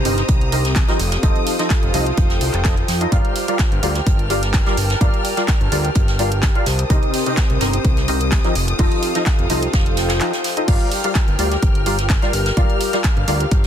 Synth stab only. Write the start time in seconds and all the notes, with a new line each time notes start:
0.05 C3 D#4 G4 A#4 C5 D#5
0.52 C3 D#4 G4 A#4 C5 D#5
0.88 F3 D#4 G4 A#4 C5 D#5
1.23 F3 D#4 F4 A4 C5 D#5
1.59 F3 D#4 F4 A4 C5 D#5
1.94 F3 D#4 F4 A4 C5 D#5
2.65 F3 D#4 F4 A4 C5 D#5
3.01 D#4 F4 A4 C5 D#5
3.12 G3 F4 G4 A#4 D5 F5
3.48 G3 F4 G4 A#4 D5 F5
3.83 G3 F4 G4 A#4 D5 F5
4.30 G3 F4 G4 A#4 D5 F5
4.66 G3 F4 G4 A#4 D5 F5
5.01 G3 F4 G4 A#4 D5 F5
5.37 G3 F4 G4 A#4 D5 F5
5.72 G3 F4 G4 A#4 D5 F5
6.19 G3 F4 G4 A#4 D5 F5
6.55 F4 G4 A#4 D5 F5
6.90 C3 D#4 G4 A#4 C5 D#5
7.26 C3 D#4 G4 A#4 C5 D#5
7.61 C3 D#4 G4 A#4 C5 D#5
8.08 C3 D#4 G4 A#4 C5 D#5
8.44 F3 D#4 G4 A#4 C5 D#5
8.79 F3 D#4 F4 A4 C5 D#5
9.15 F3 D#4 F4 A4 C5 D#5
9.50 F3 D#4 F4 A4 C5 D#5
10.21 F3 D#4 F4 A4 C5 D#5
10.57 D#4 F4 A4 C5 D#5
10.68 G3 F4 G4 A#4 D5 F5
11.04 G3 F4 G4 A#4 D5 F5
11.39 G3 F4 G4 A#4 D5 F5
11.86 G3 F4 G4 A#4 D5 F5
12.22 G3 F4 G4 A#4 D5 F5
12.57 G3 F4 G4 A#4 D5 F5
12.93 G3 F4 G4 A#4 D5 F5
13.28 G3 F4 G4 A#4 D5 F5